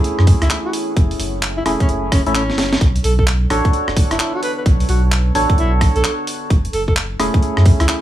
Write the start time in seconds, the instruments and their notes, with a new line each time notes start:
Already playing: synth stab A3 C#4 E4 G#4, ambient pad E4 B4 C#5 F#5
0.04 closed hi-hat
0.19 sub bass F#2, cross-stick
0.27 kick, open hi-hat
0.42 sub bass C#2, alto saxophone E4, cross-stick, closed hi-hat
0.50 alto saxophone E4, clap, closed hi-hat
0.65 alto saxophone F#4
0.73 open hi-hat
0.97 sub bass F#1, kick, closed hi-hat
1.11 open hi-hat
1.20 sub bass F#1, open hi-hat
1.43 clap, closed hi-hat
1.57 alto saxophone E4
1.66 sub bass E1, synth stab A3 C#4 E4 G#4, alto saxophone E4, cross-stick, open hi-hat
1.80 alto saxophone C#4, kick, closed hi-hat
1.89 sub bass F#1, closed hi-hat
2.12 sub bass E1, alto saxophone C#4, kick, cross-stick, open hi-hat
2.26 sub bass A1, synth stab A3 C#4 E4 A4, alto saxophone C#4, closed hi-hat
2.35 alto saxophone C#4, clap, closed hi-hat
2.50 sub bass F#1, snare
2.58 snare, open hi-hat
2.73 snare, closed hi-hat
2.81 sub bass B1, ambient pad D4, kick, closed hi-hat
2.96 closed hi-hat
3.04 sub bass B1, alto saxophone A4, open hi-hat
3.19 alto saxophone A4, kick
3.23 ambient pad B4
3.27 clap, closed hi-hat
3.50 sub bass A1, synth stab D4 F#4 A4 C#5, cross-stick, open hi-hat
3.65 kick, closed hi-hat
3.73 closed hi-hat
3.88 sub bass F#1, cross-stick
3.97 kick, open hi-hat
4.11 sub bass F#1, alto saxophone E4, cross-stick, closed hi-hat
4.20 alto saxophone E4, clap, closed hi-hat
4.34 alto saxophone F#4
4.43 alto saxophone B4, open hi-hat
4.58 alto saxophone B4
4.66 sub bass B1, kick, closed hi-hat
4.80 open hi-hat
4.89 sub bass B1, alto saxophone F#4, open hi-hat
5.12 clap, closed hi-hat
5.35 sub bass A1, synth stab D4 F#4 A4 C#5, open hi-hat
5.50 kick, closed hi-hat
5.58 sub bass B1, alto saxophone E4, closed hi-hat
5.81 kick, cross-stick, open hi-hat
5.96 sub bass B1, alto saxophone A4, closed hi-hat
6.04 alto saxophone A4, clap, closed hi-hat
6.27 open hi-hat
6.50 sub bass F#1, ambient pad E4, kick, closed hi-hat
6.65 ambient pad C#5, closed hi-hat
6.73 sub bass F#1, alto saxophone A4, open hi-hat
6.88 alto saxophone A4, kick
6.96 clap, closed hi-hat
7.20 sub bass E1, synth stab A3 C#4 E4 G#4, cross-stick, open hi-hat
7.34 kick, closed hi-hat
7.43 closed hi-hat
7.57 sub bass F#2, cross-stick
7.66 kick, open hi-hat
7.80 sub bass C#2, alto saxophone E4, cross-stick, closed hi-hat
7.89 alto saxophone E4, clap, closed hi-hat